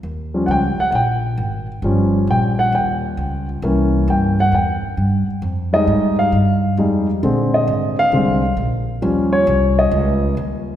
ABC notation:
X:1
M:4/4
L:1/8
Q:"Swing" 1/4=134
K:Ebmix
V:1 name="Grand piano"
z2 [_g=g] _g [g=g]3 z | z2 g _g =g3 z | z2 g _g =g3 z | z e2 f3 z2 |
z e2 f3 z2 | z d2 e3 z2 |]
V:2 name="Grand piano" clef=bass
z [F,G,D] z6 | [F,G,D]8 | [=E,B,D]3 z4 z | z [G,A,E]3 z2 [G,A,E] z |
[=D,A,C]4 [D,A,C] z3 | [F,G,D]8 |]
V:3 name="Upright bass" clef=bass
E,,2 D,, z B,,,2 A,,,2 | G,,,2 B,,,2 E,,2 D,,2 | C,,2 G,,2 =E,, z G,, z | F,,2 A,,2 G,,2 F,,2 |
B,,,2 A,,,2 C,,2 B,,,2 | E,,2 C,,2 D,,2 E,,2 |]